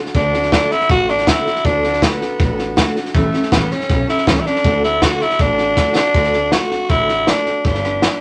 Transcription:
Already playing: steel-string acoustic guitar F#4 A4
0.00 steel-string acoustic guitar D4
0.06 snare
0.14 upright bass D2, steel-string acoustic guitar D3 A3 D4 F#4 A4, tenor saxophone D4, kick, snare
0.33 steel-string acoustic guitar D4 F#4 A4, snare
0.43 snare
0.52 steel-string acoustic guitar D3 A3 D4 F#4 A4, tenor saxophone D4, kick, snare, hi-hat pedal
0.71 steel-string acoustic guitar D4 F#4 A4, tenor saxophone E4, muted upright bass stroke, snare
0.80 snare
0.89 upright bass A1, steel-string acoustic guitar A3 D4 F#4 A4, tenor saxophone F#4, kick, snare
1.08 tenor saxophone D4, steel-string acoustic guitar D4 F#4 A4, snare
1.18 snare
1.27 steel-string acoustic guitar D3 A3 D4 F#4 A4, tenor saxophone E4, kick, snare, hi-hat pedal
1.45 steel-string acoustic guitar D4 F#4 A4, muted upright bass stroke, snare
1.56 snare
1.64 upright bass D2, steel-string acoustic guitar D3 A3 D4 F#4 A4, tenor saxophone D4, kick, snare
1.83 steel-string acoustic guitar D4 F#4 A4, snare
1.93 snare
2.01 steel-string acoustic guitar D3 A3 D4 F#4 A4, tenor saxophone B3, kick, snare, hi-hat pedal
2.20 steel-string acoustic guitar D4 F#4 A4, muted upright bass stroke, snare
2.38 upright bass A1, steel-string acoustic guitar A3 D4 F#4 A4, kick, snare
2.57 steel-string acoustic guitar D4 F#4 A4, snare
2.76 steel-string acoustic guitar D3 A3 D4 F#4 A4, kick, snare, hi-hat pedal
2.95 steel-string acoustic guitar D4 F#4 A4, muted upright bass stroke, snare
3.05 snare
3.14 upright bass A1, steel-string acoustic guitar A2 E3 G3 C#4 G4 A4, tenor saxophone A3, kick, snare
3.32 steel-string acoustic guitar G3 C#4 G4 A4, muted upright bass stroke, snare
3.43 snare
3.52 upright bass A1, steel-string acoustic guitar A2 E3 G3 C#4 G4 A4, tenor saxophone B3, kick, snare, hi-hat pedal
3.70 steel-string acoustic guitar G3 C#4 G4 A4, tenor saxophone C#4, muted upright bass stroke, snare
3.80 snare
3.89 upright bass B1, steel-string acoustic guitar G3 C#4 G4 A4, kick, snare
4.07 steel-string acoustic guitar G3 C#4 G4 A4, tenor saxophone E4, muted upright bass stroke, snare
4.18 snare
4.26 upright bass C#2, steel-string acoustic guitar A2 E3 G3 C#4 G4 A4, tenor saxophone C#4, kick, snare, hi-hat pedal
4.40 tenor saxophone E4
4.45 steel-string acoustic guitar G3 C#4 G4 A4, tenor saxophone D4, muted upright bass stroke, snare
4.55 snare
4.64 upright bass D2, steel-string acoustic guitar D3 A3 D4 F#4 A4, kick, snare
4.82 steel-string acoustic guitar D4 F#4 A4, tenor saxophone E4, snare
5.01 steel-string acoustic guitar D3 A3 D4 F#4 A4, tenor saxophone F#4, kick, snare, hi-hat pedal
5.20 steel-string acoustic guitar D4 F#4 A4, tenor saxophone E4, muted upright bass stroke, snare
5.30 snare
5.39 upright bass A1, steel-string acoustic guitar A3 D4 F#4 A4, tenor saxophone D4, kick, snare
5.58 steel-string acoustic guitar D4 F#4 A4, snare
5.77 steel-string acoustic guitar D3 A3 D4 F#4 A4, kick, snare, hi-hat pedal
5.95 tenor saxophone D4, steel-string acoustic guitar D4 F#4 A4, muted upright bass stroke, snare
6.14 upright bass D2, steel-string acoustic guitar D3 A3 D4 F#4 A4, kick, snare
6.24 snare
6.33 steel-string acoustic guitar D4 F#4 A4, snare
6.52 steel-string acoustic guitar A3 D4 F#4 A4, tenor saxophone F#4, snare, hi-hat pedal
6.70 steel-string acoustic guitar D4 F#4 A4, muted upright bass stroke, snare
6.89 upright bass A1, steel-string acoustic guitar D3 A3 D4 F#4 A4, tenor saxophone E4, kick, snare
7.08 steel-string acoustic guitar D4 F#4 A4, snare
7.26 steel-string acoustic guitar A3 D4 F#4 A4, tenor saxophone D4, snare, hi-hat pedal
7.45 steel-string acoustic guitar D4 F#4 A4, muted upright bass stroke, snare
7.64 upright bass G1, steel-string acoustic guitar G3 D4 G4 B4, tenor saxophone D4, kick, snare
7.74 snare
7.83 steel-string acoustic guitar D4 G4 B4, snare
8.02 steel-string acoustic guitar G3 D4 G4 B4, snare, hi-hat pedal

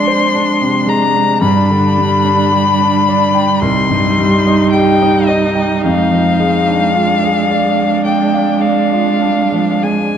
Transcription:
Already playing: grand piano F2 G#4 C5 D5, cello G#3, viola D4, violin C6
0.07 grand piano C5
0.35 grand piano D4
0.61 grand piano C3
0.86 grand piano G#3, violin A#5
1.15 grand piano C3
1.41 grand piano G2, cello G3, viola D4, violin B5
1.70 grand piano D3
1.97 grand piano G3
2.25 grand piano D4
2.52 grand piano G4
2.80 grand piano D4
3.09 grand piano D5
3.34 grand piano G5
3.60 grand piano C2, viola D#4, violin C6
3.90 grand piano G2
4.18 grand piano G3
4.47 grand piano D#4
4.71 grand piano G4, violin G5
5.02 grand piano D#4
5.26 violin D#5, grand piano D#5
5.55 grand piano G5
5.81 grand piano F2, cello G#3, violin F5
6.11 grand piano F3
6.40 grand piano G#3
6.68 grand piano D4
6.93 viola D4, grand piano F4
7.24 grand piano G#4
7.50 grand piano D5
7.79 grand piano F5
8.05 grand piano D5, violin G5
8.34 grand piano F5
8.61 grand piano D5, violin F5
8.93 grand piano F4
9.21 grand piano D4
9.52 grand piano F3
9.83 grand piano G#3, violin G#5

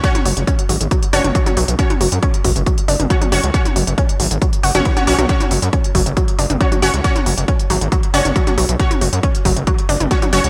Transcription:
0.04 synth stab C#4 F#4 C#5, kick, closed hi-hat
0.15 closed hi-hat, mid tom
0.25 analog synth bass F#1, synth arpeggio sound F#3, open hi-hat
0.37 analog synth bass F#1, closed hi-hat
0.47 synth arpeggio sound C#4, kick, closed hi-hat
0.59 closed hi-hat
0.69 analog synth bass G#1, synth arpeggio sound F#3, open hi-hat
0.81 analog synth bass G#1, closed hi-hat
0.91 synth arpeggio sound F#3, kick, closed hi-hat
1.03 closed hi-hat
1.13 analog synth bass F#1, synth stab C#4 F#4 C#5, synth arpeggio sound D4, open hi-hat
1.24 analog synth bass F#1, closed hi-hat, mid tom
1.35 synth arpeggio sound F#3, kick, closed hi-hat
1.46 synth arpeggio sound F#3, closed hi-hat, mid tom
1.57 analog synth bass B1, synth arpeggio sound F#3, open hi-hat
1.68 analog synth bass B1, closed hi-hat
1.79 synth stab C#4 F#4 C#5, kick, closed hi-hat
1.90 closed hi-hat, mid tom
2.01 analog synth bass F#1, synth arpeggio sound F#3, open hi-hat
2.12 analog synth bass F#2, closed hi-hat
2.23 synth arpeggio sound C#4, kick, closed hi-hat
2.34 closed hi-hat
2.44 analog synth bass F#1, synth arpeggio sound F#3, kick, open hi-hat
2.56 analog synth bass F#1, closed hi-hat
2.66 synth arpeggio sound F#3, kick, closed hi-hat
2.78 closed hi-hat
2.88 analog synth bass F#1, synth arpeggio sound D4, open hi-hat
3.00 analog synth bass F#1, closed hi-hat, mid tom
3.10 synth arpeggio sound F#3, synth stab C#4 F#4 C#5, kick, closed hi-hat
3.22 synth arpeggio sound F#3, closed hi-hat, mid tom
3.32 analog synth bass F#1, synth arpeggio sound F#3, synth stab C#4 F#4 C#5, open hi-hat
3.43 analog synth bass C#2, closed hi-hat
3.54 synth stab C#4 F#4 C#5, kick, closed hi-hat
3.65 closed hi-hat, mid tom
3.76 analog synth bass F#1, synth arpeggio sound F#3, open hi-hat
3.87 analog synth bass F#1, closed hi-hat
3.98 synth arpeggio sound C#4, kick, closed hi-hat
4.09 closed hi-hat
4.20 analog synth bass G#1, synth arpeggio sound F#3, open hi-hat
4.31 analog synth bass G#1, closed hi-hat
4.42 synth arpeggio sound F#3, kick, closed hi-hat
4.53 closed hi-hat
4.63 analog synth bass F#1, synth arpeggio sound F#4, open hi-hat
4.75 analog synth bass F#1, synth arpeggio sound F#3, synth stab C#4 F#4 C#5, closed hi-hat, mid tom
4.85 synth arpeggio sound E3, kick, closed hi-hat
4.97 synth stab C#4 F#4 C#5, synth arpeggio sound F#4, closed hi-hat, mid tom
5.07 analog synth bass B1, synth arpeggio sound F#3, synth stab C#4 F#4 C#5, open hi-hat
5.19 analog synth bass B1, synth arpeggio sound F#3, closed hi-hat, mid tom
5.29 synth stab C#4 F#4 C#5, kick, closed hi-hat
5.40 closed hi-hat, mid tom
5.51 analog synth bass F#1, synth arpeggio sound F#3, open hi-hat
5.62 analog synth bass F#2, closed hi-hat
5.73 synth arpeggio sound C#4, kick, closed hi-hat
5.84 closed hi-hat
5.95 analog synth bass F#1, synth arpeggio sound F#3, kick, open hi-hat
6.06 analog synth bass F#1, closed hi-hat
6.17 synth arpeggio sound F#3, kick, closed hi-hat
6.28 closed hi-hat
6.39 analog synth bass F#1, synth arpeggio sound D4, open hi-hat
6.50 analog synth bass F#1, closed hi-hat, mid tom
6.61 synth arpeggio sound F#3, synth stab C#4 F#4 C#5, kick, closed hi-hat
6.72 synth arpeggio sound F#3, closed hi-hat, mid tom
6.82 analog synth bass F#1, synth arpeggio sound F#3, synth stab C#4 F#4 C#5, open hi-hat
6.94 analog synth bass C#2, closed hi-hat
7.04 synth stab C#4 F#4 C#5, kick, closed hi-hat
7.16 closed hi-hat, mid tom
7.26 analog synth bass F#1, synth arpeggio sound F#3, open hi-hat
7.38 analog synth bass F#1, closed hi-hat
7.48 synth arpeggio sound C#4, kick, closed hi-hat
7.59 closed hi-hat
7.70 analog synth bass G#1, synth arpeggio sound F#3, open hi-hat
7.81 analog synth bass G#1, closed hi-hat
7.92 synth arpeggio sound F#3, kick, closed hi-hat
8.03 closed hi-hat
8.14 analog synth bass F#1, synth stab C#4 F#4 C#5, synth arpeggio sound D4, open hi-hat
8.25 analog synth bass F#1, closed hi-hat, mid tom
8.36 synth arpeggio sound F#3, kick, closed hi-hat
8.47 synth arpeggio sound F#3, closed hi-hat, mid tom
8.58 analog synth bass B1, synth arpeggio sound F#3, open hi-hat
8.69 analog synth bass B1, closed hi-hat
8.79 synth stab C#4 F#4 C#5, kick, closed hi-hat
8.91 closed hi-hat, mid tom
9.01 analog synth bass F#1, synth arpeggio sound F#3, open hi-hat
9.13 analog synth bass F#2, closed hi-hat
9.23 synth arpeggio sound C#4, kick, closed hi-hat
9.35 closed hi-hat
9.45 analog synth bass F#1, synth arpeggio sound F#3, kick, open hi-hat
9.56 analog synth bass F#1, closed hi-hat
9.67 synth arpeggio sound F#3, kick, closed hi-hat
9.78 closed hi-hat
9.89 analog synth bass F#1, synth arpeggio sound D4, open hi-hat
10.00 analog synth bass F#1, closed hi-hat, mid tom
10.11 synth arpeggio sound F#3, synth stab C#4 F#4 C#5, kick, closed hi-hat
10.22 synth arpeggio sound F#3, closed hi-hat, mid tom
10.33 analog synth bass F#1, synth arpeggio sound F#3, synth stab C#4 F#4 C#5, open hi-hat
10.44 analog synth bass C#2, closed hi-hat

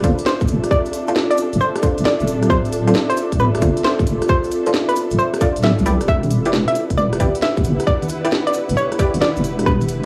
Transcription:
Already playing: ambient pad C4 F4 A4 E5, string section D4 A4 B4, synth pluck B4
0.04 wobble bass G1, synth stab D4 F4 A4 C5, kick, closed hi-hat, cabasa
0.18 closed hi-hat, cabasa
0.26 synth pluck C5, snare, cabasa
0.41 wobble bass D1, kick, closed hi-hat, cabasa
0.48 wobble bass F1, closed hi-hat, cabasa
0.64 cross-stick, closed hi-hat, cabasa
0.71 synth pluck D5, kick, cross-stick, cabasa
0.86 closed hi-hat, cabasa
0.93 closed hi-hat, cabasa
1.07 synth stab D4 F4 A4 C5, closed hi-hat, cabasa
1.15 snare, cabasa
1.31 synth pluck D5, closed hi-hat
1.38 closed hi-hat, cabasa
1.53 wobble bass D1, closed hi-hat, cabasa
1.61 synth pluck C5, cabasa
1.76 cross-stick, closed hi-hat
1.83 synth stab D4 F4 A4 C5, kick, closed hi-hat, cabasa
1.98 wobble bass D1, closed hi-hat, cabasa
2.05 synth pluck D5, snare, cabasa
2.20 wobble bass F1, closed hi-hat, cabasa
2.28 wobble bass D1, closed hi-hat, cabasa
2.43 cross-stick, closed hi-hat, cabasa
2.50 synth pluck C5, kick, cross-stick, cabasa
2.65 closed hi-hat, cabasa
2.72 closed hi-hat, cabasa
2.87 synth stab D4 F4 A4 C5, closed hi-hat, cabasa
2.94 snare, cabasa
3.10 synth pluck C5, closed hi-hat
3.17 closed hi-hat, cabasa
3.32 wobble bass D1, kick, closed hi-hat, cabasa
3.39 synth pluck B4, cabasa
3.55 cross-stick, closed hi-hat
3.62 wobble bass G1, synth stab D4 F4 A4 C5, kick, closed hi-hat, cabasa
3.77 closed hi-hat, cabasa
3.84 synth pluck C5, snare, cabasa
3.99 wobble bass D1, kick, closed hi-hat, cabasa
4.07 wobble bass F1, closed hi-hat, cabasa
4.22 cross-stick, closed hi-hat, cabasa
4.28 synth pluck C5, kick, cross-stick, cabasa
4.43 closed hi-hat, cabasa
4.51 closed hi-hat, cabasa
4.66 synth stab D4 F4 A4 C5, closed hi-hat, cabasa
4.74 snare, cabasa
4.89 synth pluck B4, closed hi-hat, cabasa
4.96 closed hi-hat, cabasa
5.10 wobble bass D1, closed hi-hat, cabasa
5.19 synth pluck C5, cabasa
5.34 cross-stick, closed hi-hat, cabasa
5.41 synth stab D4 F4 A4 D5, kick, closed hi-hat, cabasa
5.56 wobble bass D1, closed hi-hat, cabasa
5.63 synth pluck E5, snare, cabasa
5.78 wobble bass D2, closed hi-hat, cabasa
5.86 wobble bass C2, synth stab E4 G4 B4 D5, closed hi-hat, cabasa
6.00 wobble bass E1, cross-stick, closed hi-hat, cabasa
6.08 ambient pad D4 G4 B4 F#5, string section E4, synth pluck E5, kick, cross-stick, cabasa
6.23 closed hi-hat, high conga, cabasa
6.31 closed hi-hat, cabasa
6.45 synth stab E4 G4 B4 D5, string section B4, closed hi-hat, cabasa
6.53 snare, cabasa
6.68 synth pluck E5, closed hi-hat
6.75 closed hi-hat, cabasa
6.90 wobble bass E1, kick, closed hi-hat, cabasa
6.98 synth pluck D5, cabasa
7.13 cross-stick, closed hi-hat
7.20 wobble bass A1, synth stab E4 G4 B4 D5, kick, closed hi-hat, cabasa
7.35 closed hi-hat, cabasa
7.42 synth pluck E5, snare, cabasa
7.57 wobble bass E1, kick, closed hi-hat, cabasa
7.64 wobble bass G1, closed hi-hat, cabasa
7.79 cross-stick, closed hi-hat, cabasa
7.87 synth pluck D5, kick, cross-stick, cabasa
8.02 closed hi-hat, high conga, cabasa
8.09 closed hi-hat, cabasa
8.25 synth stab E4 G4 B4 D5, closed hi-hat, cabasa
8.32 snare, cabasa
8.47 synth pluck D5, closed hi-hat
8.53 closed hi-hat, cabasa
8.69 wobble bass E1, closed hi-hat, cabasa
8.77 synth pluck C#5, cabasa
8.92 cross-stick, closed hi-hat
8.99 synth stab E4 G4 B4 D5, kick, closed hi-hat, cabasa
9.14 wobble bass E1, closed hi-hat, high conga, cabasa
9.21 synth pluck D5, snare, cabasa
9.37 wobble bass G1, closed hi-hat, cabasa
9.44 wobble bass E1, closed hi-hat, cabasa
9.59 cross-stick, closed hi-hat, cabasa
9.66 ambient pad A4, synth pluck B4, kick, cross-stick, cabasa
9.81 closed hi-hat, high conga, cabasa
9.88 closed hi-hat, cabasa

